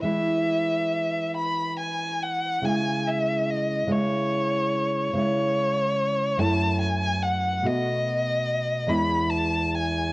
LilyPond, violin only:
\new Staff \with { instrumentName = "Violin" } { \time 6/8 \key e \major \tempo 4. = 48 e''4. b''8 gis''8 fis''8 | gis''8 e''8 dis''8 cis''4. | cis''4. a''8 gis''8 fis''8 | dis''4. b''8 a''8 gis''8 | }